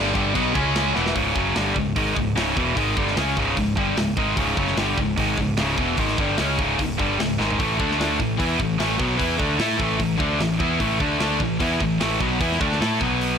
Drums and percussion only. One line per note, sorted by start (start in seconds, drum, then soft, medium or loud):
0.07 snare soft
0.15 kick medium
0.15 crash medium
0.35 kick loud
0.35 crash medium
0.55 kick loud
0.55 crash medium
0.75 snare loud
0.75 crash medium
0.96 snare medium
1.06 snare medium
1.16 kick loud
1.16 open hi-hat soft
1.36 kick loud
1.55 snare loud
1.55 open hi-hat soft
1.76 kick medium
1.96 kick medium
1.96 open hi-hat medium
2.16 kick medium
2.37 snare loud
2.37 open hi-hat medium
2.57 kick medium
2.77 kick loud
2.77 open hi-hat medium
2.97 kick loud
3.08 snare soft
3.17 snare loud
3.17 open hi-hat medium
3.37 kick medium
3.57 kick medium
3.57 open hi-hat medium
3.77 kick loud
3.97 snare loud
3.97 open hi-hat medium
4.17 kick loud
4.37 kick medium
4.37 open hi-hat medium
4.57 kick loud
4.67 snare soft
4.77 snare loud
4.77 open hi-hat soft
4.98 kick medium
5.17 kick loud
5.17 open hi-hat medium
5.38 kick medium
5.57 snare loud
5.57 open hi-hat medium
5.78 kick loud
5.97 kick medium
5.97 open hi-hat medium
6.08 snare soft
6.18 kick loud
6.37 snare loud
6.37 open hi-hat medium
6.59 kick medium
6.79 kick medium
6.79 open hi-hat medium
6.99 kick loud
7.20 snare loud
7.20 open hi-hat medium
7.41 snare medium
7.51 floor tom medium
7.60 kick loud
7.60 open hi-hat soft
7.80 kick loud
7.91 snare soft
8.01 snare loud
8.01 open hi-hat medium
8.20 kick medium
8.40 kick medium
8.40 open hi-hat soft
8.60 kick medium
8.80 snare loud
8.80 open hi-hat medium
9.00 kick loud
9.19 kick medium
9.19 open hi-hat medium
9.40 kick loud
9.59 snare loud
9.59 open hi-hat medium
9.80 kick medium
10.00 kick medium
10.00 open hi-hat soft
10.20 kick loud
10.40 snare loud
10.40 open hi-hat medium
10.60 kick loud
10.80 kick medium
10.80 open hi-hat soft
11.00 kick loud
11.20 snare loud
11.20 open hi-hat soft
11.40 kick medium
11.60 kick loud
11.60 open hi-hat medium
11.80 kick loud
12.00 snare loud
12.00 open hi-hat medium
12.21 kick loud
12.41 kick medium
12.41 open hi-hat medium
12.52 snare soft
12.61 kick loud
12.72 snare soft
12.82 snare loud
12.82 open hi-hat medium
13.01 kick loud
13.21 open hi-hat medium